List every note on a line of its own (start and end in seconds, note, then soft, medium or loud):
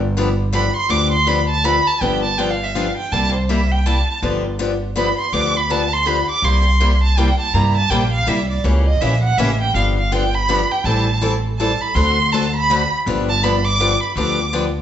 0.00 0.68 G1 loud
0.17 0.28 D3 medium
0.17 0.28 F3 medium
0.17 0.28 B3 medium
0.17 0.28 D4 loud
0.17 0.28 G4 loud
0.53 0.64 D3 medium
0.53 0.64 F3 medium
0.53 0.65 B3 medium
0.53 0.65 D4 medium
0.53 0.65 G4 loud
0.53 0.75 B5 medium
0.77 0.92 C6 loud
0.89 1.78 D2 medium
0.89 1.11 D3 medium
0.89 1.11 F3 medium
0.89 1.11 B3 medium
0.89 1.11 D4 medium
0.89 1.11 G4 medium
0.89 1.12 D6 loud
1.12 1.29 C6 loud
1.26 1.38 D3 medium
1.26 1.38 F3 medium
1.26 1.38 B3 loud
1.26 1.38 D4 loud
1.26 1.38 G4 medium
1.26 1.49 B5 medium
1.49 1.66 A5 loud
1.64 1.75 D3 loud
1.64 1.75 F3 medium
1.64 1.76 B3 medium
1.64 1.76 D4 medium
1.64 1.76 G4 loud
1.64 1.88 B5 loud
1.87 2.03 A5 loud
2.01 2.90 G1 medium
2.01 2.22 D3 medium
2.01 2.22 F3 medium
2.01 2.22 B3 medium
2.01 2.23 D4 medium
2.01 2.23 G4 medium
2.01 2.22 G5 medium
2.23 2.39 A5 loud
2.38 2.49 D3 medium
2.38 2.50 F3 medium
2.38 2.50 B3 medium
2.38 2.50 D4 medium
2.38 2.50 G4 medium
2.38 2.52 G5 medium
2.50 2.65 F5 medium
2.64 2.76 E5 medium
2.75 2.86 D3 medium
2.75 2.86 F3 medium
2.75 2.87 B3 medium
2.75 2.87 D4 medium
2.75 2.87 G4 medium
2.75 2.96 F5 medium
2.97 3.13 G5 medium
3.12 4.00 C2 medium
3.12 3.33 C3 medium
3.12 3.33 G3 medium
3.12 3.33 A#3 medium
3.12 3.33 E4 medium
3.12 3.34 G4 medium
3.12 3.34 A5 loud
3.35 3.51 C5 medium
3.49 3.60 C3 medium
3.49 3.60 G3 medium
3.49 3.60 A#3 medium
3.49 3.60 E4 medium
3.49 3.61 G4 medium
3.49 3.73 E5 medium
3.72 3.88 G5 medium
3.86 3.97 C3 medium
3.86 3.97 G3 medium
3.86 3.97 A#3 medium
3.86 3.97 E4 medium
3.86 3.97 G4 loud
3.86 4.16 A5 medium
4.22 5.11 G1 medium
4.22 4.43 D3 medium
4.22 4.44 F3 medium
4.22 4.44 B3 medium
4.22 4.44 D4 medium
4.22 4.44 G4 medium
4.59 4.70 D3 medium
4.59 4.71 F3 medium
4.59 4.70 B3 medium
4.59 4.71 D4 medium
4.59 4.71 G4 medium
4.96 5.07 D3 medium
4.96 5.07 F3 medium
4.96 5.08 B3 medium
4.96 5.08 D4 medium
4.96 5.08 G4 medium
4.96 5.18 B5 medium
5.19 5.35 C6 medium
5.32 6.21 D2 medium
5.32 5.54 D3 medium
5.32 5.54 F3 medium
5.32 5.54 B3 medium
5.32 5.54 D4 medium
5.32 5.55 G4 medium
5.32 5.58 D6 medium
5.57 5.72 B5 medium
5.70 5.81 D3 medium
5.70 5.81 F3 medium
5.70 5.81 B3 medium
5.70 5.81 D4 medium
5.70 5.81 G4 medium
5.70 5.95 A5 loud
5.93 6.08 C6 loud
6.06 6.17 D3 medium
6.06 6.18 F3 medium
6.06 6.18 B3 medium
6.06 6.18 D4 medium
6.06 6.18 G4 medium
6.06 6.30 B5 medium
6.30 6.46 D6 loud
6.42 7.31 C2 medium
6.42 6.65 C3 medium
6.42 6.65 G3 medium
6.42 6.65 A#3 medium
6.42 6.65 E4 medium
6.42 6.65 G4 medium
6.42 7.03 C6 medium
6.80 6.92 C3 medium
6.80 6.92 G3 medium
6.80 6.92 A#3 medium
6.80 6.92 E4 medium
6.80 6.92 G4 medium
7.04 7.20 A5 medium
7.17 7.28 C3 medium
7.17 7.29 G3 medium
7.17 7.29 A#3 medium
7.17 7.29 E4 medium
7.17 7.29 G4 medium
7.17 7.40 G5 medium
7.40 7.55 A5 medium
7.54 7.83 G2 medium
7.54 7.75 C3 medium
7.54 7.75 G3 medium
7.54 7.75 A#3 medium
7.54 7.76 E4 medium
7.54 7.76 G4 medium
7.54 7.76 A#5 medium
7.77 7.91 A5 loud
7.90 8.22 A#1 medium
7.90 8.02 C3 medium
7.90 8.02 G3 loud
7.90 8.02 A#3 medium
7.90 8.02 E4 medium
7.90 8.02 G4 loud
7.90 8.12 G5 medium
8.12 8.29 F5 loud
8.27 8.59 C2 medium
8.27 8.38 C3 medium
8.27 8.39 G3 medium
8.27 8.39 A#3 loud
8.27 8.39 E4 medium
8.27 8.39 G4 medium
8.27 8.49 E5 medium
8.50 8.66 D5 medium
8.64 8.94 C#2 loud
8.64 8.85 C#3 medium
8.64 8.85 E3 medium
8.64 8.86 A#3 medium
8.64 8.86 C#4 medium
8.64 8.86 G4 medium
8.64 8.85 C#5 medium
8.86 9.02 D#5 medium
9.01 9.33 A#1 medium
9.01 9.13 C#3 medium
9.01 9.13 E3 medium
9.01 9.13 A#3 loud
9.01 9.13 C#4 medium
9.01 9.13 G4 medium
9.01 9.23 E5 medium
9.24 9.39 F#5 loud
9.38 9.69 A1 medium
9.38 9.49 C#3 loud
9.38 9.49 E3 medium
9.38 9.50 A#3 medium
9.38 9.50 C#4 loud
9.38 9.50 G4 loud
9.38 9.60 E5 medium
9.61 9.74 G5 loud
9.74 10.63 G1 loud
9.74 9.96 D3 medium
9.74 9.96 F3 medium
9.74 9.96 B3 medium
9.74 9.97 D4 medium
9.74 9.97 G4 medium
9.74 9.89 F5 medium
9.98 10.13 F5 medium
10.12 10.23 D3 medium
10.12 10.23 F3 medium
10.12 10.23 B3 medium
10.12 10.23 D4 medium
10.12 10.24 G4 medium
10.12 10.36 G5 loud
10.35 10.73 B5 loud
10.49 10.60 D3 medium
10.49 10.60 F3 medium
10.49 10.60 B3 medium
10.49 10.60 D4 medium
10.49 10.60 G4 loud
10.71 10.87 G5 loud
10.84 11.73 A1 medium
10.84 11.06 E3 medium
10.84 11.07 G3 medium
10.84 11.07 C4 medium
10.84 11.07 E4 medium
10.84 11.07 A4 medium
10.84 11.22 A5 medium
11.21 11.33 E3 medium
11.21 11.33 G3 medium
11.21 11.33 C4 medium
11.21 11.34 E4 medium
11.21 11.34 A4 medium
11.59 11.71 E3 medium
11.59 11.71 G3 medium
11.59 11.71 C4 medium
11.59 11.71 E4 loud
11.59 11.71 A4 medium
11.59 11.82 A5 medium
11.81 11.96 B5 loud
11.95 12.84 D2 loud
11.95 12.17 D3 medium
11.95 12.17 A3 medium
11.95 12.17 C4 medium
11.95 12.17 F#4 medium
11.95 12.17 A4 medium
11.95 12.34 C6 loud
12.32 12.44 D3 medium
12.32 12.44 A3 medium
12.32 12.44 C4 medium
12.32 12.44 F#4 medium
12.32 12.45 A4 loud
12.32 12.55 A5 medium
12.56 12.90 B5 loud
12.70 12.81 D3 medium
12.70 12.81 A3 medium
12.70 12.81 C4 medium
12.70 12.81 F#4 loud
12.70 12.82 A4 loud
13.06 13.95 G1 loud
13.06 13.27 D3 medium
13.06 13.28 F3 medium
13.06 13.28 B3 medium
13.06 13.28 D4 medium
13.06 13.28 G4 medium
13.29 13.45 A5 loud
13.43 13.54 D3 medium
13.43 13.55 F3 medium
13.43 13.55 B3 medium
13.43 13.55 D4 loud
13.43 13.55 G4 medium
13.43 13.67 B5 loud
13.65 14.02 D6 loud
13.80 13.91 D3 medium
13.80 13.91 F3 medium
13.80 13.91 B3 loud
13.80 13.91 D4 loud
13.80 13.92 G4 loud
14.03 14.19 B5 medium
14.16 14.82 D2 medium
14.16 14.38 D3 medium
14.16 14.38 F3 medium
14.16 14.38 B3 medium
14.16 14.38 D4 medium
14.16 14.38 G4 medium
14.16 14.54 D6 medium
14.53 14.64 D3 medium
14.53 14.65 F3 loud
14.53 14.65 B3 medium
14.53 14.65 D4 medium
14.53 14.65 G4 medium